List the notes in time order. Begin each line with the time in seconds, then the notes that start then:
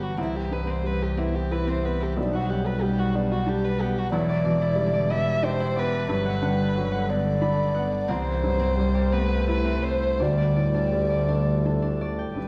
Already playing: G1 G2 D3 F#3 B3 D4 D5 F#5 G5 B5
0.03 F#4
0.16 C2 E3 C4 E4
0.36 G4
0.51 G2 B4
0.67 C4 C5
0.84 G3 B4
1.02 G4
1.17 B3 C4 E4
1.35 G4
1.51 E4 B4
1.67 C4 C5
1.83 B3 B4
2.00 E4 G4
2.17 B1 G3 D4
2.33 F#4 F#5
2.49 F#2 G4 F#5
2.67 B4
2.81 G3 G4
2.98 F#4 F#5
3.14 B3 D4
3.31 F#4
3.46 D4 G4
3.64 B4
3.79 B3 G4 F#5
3.98 F#4
4.12 E1 E2 F#3 E4 D5
4.29 D5
4.43 B2 E3 D5
4.61 E4
4.76 D3 G3
4.93 D5
5.10 E3 B3 E4 E5
5.43 D4 C5 G5
5.60 E4
5.76 B3 B4 D5
6.09 G1 G2 F#3 B4
6.25 F#5
6.42 D3 G3 F#5
6.75 D3 F#3
6.92 F#5
7.08 B3 D5
7.41 D4 B5
7.74 B3 F#5
8.08 C2 E3 C4 C5
8.43 G2 F#3
8.60 C4
8.77 G3
8.94 G4
9.12 A3 B3 C4 B4
9.47 E4 B4
9.65 C4
9.82 C4 C5
10.00 E4
10.19 D2 G3 D4 D5
10.38 D5
10.56 A2 D5
10.74 D4
10.93 G3
11.10 D5
11.28 A3 D4
11.65 D4 A4
11.82 D4
12.01 A3 D5
12.19 G5
12.35 G1 G2 F#3 B4